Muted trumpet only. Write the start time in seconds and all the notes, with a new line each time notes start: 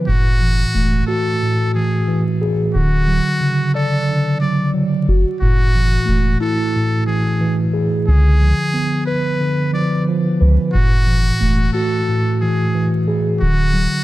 0.07 F#4
1.07 A4
1.74 G#4
2.74 F#4
3.74 A4
4.41 D5
5.41 F#4
6.40 A4
7.07 G#4
8.08 G#4
9.06 B4
9.74 D5
10.73 F#4
11.73 A4
12.41 G#4
13.40 F#4